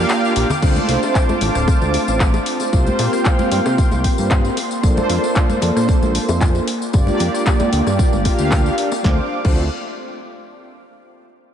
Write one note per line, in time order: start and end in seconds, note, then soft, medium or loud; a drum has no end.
0.00 0.33 A#3 loud
0.00 0.58 A#3 medium
0.00 0.33 D4 medium
0.00 0.33 F4 medium
0.00 0.33 G4 medium
0.00 0.33 F5 loud
0.00 0.60 F5 medium
0.00 0.60 G5 medium
0.00 0.60 D6 medium
0.09 clap loud
0.09 tambourine medium
0.09 high bongo medium
0.25 tambourine soft
0.35 0.45 A#1 medium
0.35 0.47 A#3 medium
0.35 0.47 D4 medium
0.35 0.47 F4 medium
0.35 0.48 G4 medium
0.35 0.48 D5 medium
0.35 open hi-hat loud
0.50 tambourine medium
0.50 high bongo medium
0.50 low conga medium
0.61 0.79 D2 loud
0.61 1.38 A3 loud
0.61 1.38 C4 medium
0.61 1.38 D4 medium
0.61 1.39 F4 medium
0.61 2.71 C5 medium
0.61 1.39 C5 loud
0.61 2.71 F5 medium
0.61 2.71 A5 medium
0.61 2.71 D6 loud
0.61 kick loud
0.61 crash loud
0.61 tambourine medium
0.61 high bongo medium
0.76 tambourine soft
0.76 high conga medium
0.89 0.97 C2 medium
0.89 open hi-hat loud
1.03 tambourine medium
1.03 high bongo medium
1.15 kick loud
1.15 clap loud
1.15 tambourine medium
1.29 tambourine soft
1.29 high bongo medium
1.29 high conga medium
1.40 1.50 A1 medium
1.40 2.69 A3 medium
1.40 2.70 C4 medium
1.40 2.70 D4 medium
1.40 2.70 F4 medium
1.40 2.70 C5 medium
1.40 open hi-hat loud
1.55 1.67 D1 medium
1.55 cross-stick medium
1.55 tambourine medium
1.68 1.79 D2 soft
1.68 kick loud
1.68 tambourine medium
1.68 high bongo medium
1.82 1.97 D2 medium
1.82 tambourine soft
1.82 high conga medium
1.94 open hi-hat loud
1.94 high bongo soft
2.08 2.39 A1 medium
2.08 tambourine medium
2.20 kick loud
2.20 clap loud
2.20 tambourine medium
2.34 tambourine soft
2.34 high bongo medium
2.46 open hi-hat loud
2.60 tambourine medium
2.60 high bongo medium
2.72 2.90 C2 loud
2.72 3.48 A#3 loud
2.72 9.00 A#3 medium
2.72 3.49 C4 medium
2.72 3.49 F4 medium
2.72 3.49 G4 medium
2.72 3.49 C5 loud
2.72 4.55 F5 medium
2.72 4.55 G5 medium
2.72 6.64 C6 medium
2.72 kick loud
2.72 tambourine medium
2.87 tambourine soft
2.87 high conga medium
2.99 3.08 A#2 medium
2.99 open hi-hat loud
2.99 high bongo medium
3.13 cross-stick medium
3.13 tambourine medium
3.25 kick loud
3.25 clap loud
3.25 tambourine medium
3.25 high bongo medium
3.39 tambourine soft
3.39 high conga loud
3.51 3.61 G2 medium
3.51 4.55 A#3 medium
3.51 4.55 C4 medium
3.51 4.56 F4 medium
3.51 4.56 G4 medium
3.51 open hi-hat loud
3.66 3.82 C3 medium
3.66 cross-stick medium
3.66 tambourine medium
3.66 high bongo medium
3.78 kick loud
3.78 tambourine medium
3.91 4.08 C2 medium
3.91 tambourine soft
3.91 high bongo medium
3.91 high conga medium
4.04 kick medium
4.04 open hi-hat loud
4.18 4.50 G2 medium
4.18 tambourine medium
4.30 kick loud
4.30 clap loud
4.30 tambourine medium
4.30 high bongo medium
4.45 tambourine soft
4.57 6.65 D5 medium
4.57 6.66 A5 medium
4.57 open hi-hat loud
4.57 high bongo medium
4.71 tambourine medium
4.82 5.01 A#1 loud
4.82 5.59 A#3 loud
4.82 5.59 D4 medium
4.82 5.59 F4 medium
4.82 5.59 A4 medium
4.82 5.60 C5 loud
4.82 kick loud
4.82 tambourine medium
4.97 tambourine soft
4.97 high bongo medium
4.97 high conga medium
5.10 5.18 F2 medium
5.10 open hi-hat loud
5.23 tambourine medium
5.23 high bongo soft
5.35 kick loud
5.35 clap loud
5.35 tambourine medium
5.50 tambourine soft
5.50 high conga loud
5.61 5.71 F2 medium
5.61 6.66 A#3 medium
5.61 6.66 D4 medium
5.61 6.66 F4 medium
5.61 6.66 A4 medium
5.61 6.67 C5 medium
5.61 open hi-hat loud
5.61 high bongo medium
5.76 5.88 A#2 medium
5.76 cross-stick medium
5.76 tambourine medium
5.88 6.00 A#1 soft
5.88 kick loud
5.88 tambourine medium
5.88 high bongo medium
6.03 6.18 A#1 loud
6.03 tambourine soft
6.03 high conga medium
6.15 open hi-hat loud
6.28 6.60 F2 medium
6.28 tambourine medium
6.28 high bongo medium
6.41 kick loud
6.41 clap loud
6.41 tambourine medium
6.55 tambourine soft
6.55 high bongo medium
6.67 9.02 F5 medium
6.67 9.02 G5 medium
6.67 9.02 D6 medium
6.67 open hi-hat loud
6.82 tambourine medium
6.93 7.11 G1 loud
6.93 7.69 A#3 loud
6.93 7.70 D4 medium
6.93 7.70 F4 medium
6.93 7.70 G4 medium
6.93 7.70 D5 loud
6.93 kick loud
6.93 tambourine medium
6.93 high bongo medium
7.07 tambourine soft
7.07 high conga medium
7.20 7.29 F2 medium
7.20 open hi-hat loud
7.20 high bongo medium
7.34 cross-stick medium
7.34 tambourine medium
7.46 kick loud
7.46 clap loud
7.46 tambourine medium
7.59 tambourine soft
7.59 high bongo medium
7.59 high conga medium
7.72 7.82 D2 medium
7.72 8.23 A#3 medium
7.72 8.23 D4 medium
7.72 8.23 F4 medium
7.72 8.23 G4 medium
7.72 8.23 D5 medium
7.72 open hi-hat loud
7.87 8.03 G2 medium
7.87 cross-stick medium
7.87 tambourine medium
7.87 high bongo medium
7.99 kick loud
7.99 tambourine medium
8.13 8.29 G1 loud
8.13 tambourine soft
8.13 high conga medium
8.25 8.75 A#3 loud
8.25 8.75 D4 medium
8.25 8.75 F4 medium
8.25 8.75 G4 medium
8.25 8.75 F5 loud
8.25 kick medium
8.25 open hi-hat loud
8.25 high bongo medium
8.38 8.71 D2 medium
8.38 tambourine medium
8.51 kick loud
8.51 clap loud
8.51 tambourine medium
8.51 high bongo soft
8.66 tambourine soft
8.78 8.89 A#3 medium
8.78 8.90 D4 medium
8.78 8.90 F4 medium
8.78 8.90 G4 medium
8.78 8.90 D5 medium
8.78 open hi-hat loud
8.92 tambourine medium
8.92 high bongo medium
9.03 9.20 D2 loud
9.03 9.19 A3 medium
9.03 9.19 C4 medium
9.03 9.29 D4 medium
9.03 9.20 D4 medium
9.03 9.20 F4 medium
9.03 9.29 C5 medium
9.03 9.20 C5 medium
9.03 9.29 F5 medium
9.03 9.29 D6 medium
9.03 kick loud
9.03 snare medium
9.43 9.69 D2 loud
9.43 9.63 A3 medium
9.43 9.64 C4 medium
9.43 9.64 D4 medium
9.43 9.64 F4 medium
9.43 9.65 C5 medium
9.43 kick loud
9.43 crash medium